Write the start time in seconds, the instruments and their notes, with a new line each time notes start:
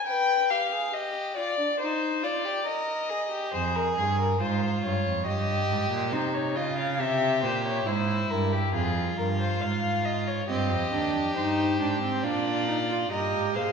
0.07 violin B4 G5
0.50 violin G4 F5
0.72 violin G#4
0.93 violin G4 D#5
1.37 violin F4 D5
1.58 violin D4
1.80 violin D#4 C5
2.23 violin F4 D5
2.44 violin G4
2.66 violin A#4 D#5
3.09 violin G#4
3.31 violin G4
3.53 cello F2, violin G#4 C5
3.76 violin A#4
3.97 cello G2, violin G#4
4.19 violin A#4
4.40 cello G#2, violin F4 C5
4.84 cello G2, violin C#5
5.05 cello F2
5.26 cello G2, violin G4 D#5
5.69 cello G#2
5.91 cello A#2
6.12 cello C3, violin D#4 C5
6.34 violin C#5
6.55 cello C#3, violin F4 D#5
6.78 violin F5
6.99 cello C3, violin G4 E5
7.43 cello A#2, violin C5
7.66 violin C#5
7.86 cello G#2, violin E4 C5
8.30 cello G2, violin A#4
8.52 violin G4
8.73 cello F2, violin F4 G#4
9.17 cello G2, violin A#4
9.40 violin C5
9.61 cello G#2, violin F5
10.05 violin D#5
10.27 violin C#5
10.48 cello G2, viola C4, violin G4 D#5
10.71 cello F2
10.92 cello D#2, viola D4
11.14 cello F2
11.36 cello G2, viola D#4, violin C5
11.80 cello G#2, viola D4
12.02 viola C4
12.24 cello A#2, viola D4, violin F4 D5
12.68 viola D#4
12.90 viola F4
13.11 cello G2, viola G4, violin A#4 D#5
13.33 cello G#2
13.55 cello A#2, viola G#4, violin C5 F5